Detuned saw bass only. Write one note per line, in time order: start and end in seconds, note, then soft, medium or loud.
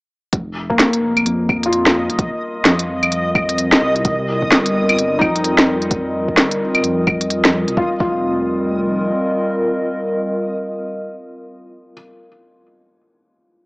0.33 1.25 F1 medium
1.26 2.11 F2 loud
2.10 2.31 F1 medium
2.65 3.71 F2 medium
3.82 4.53 C2 loud
4.51 5.20 G1 medium
5.21 6.39 F2 medium
6.37 6.83 G1 medium
6.84 7.66 F2 loud
7.68 7.76 C2 medium
7.77 7.92 F1 loud
8.00 9.12 F1 medium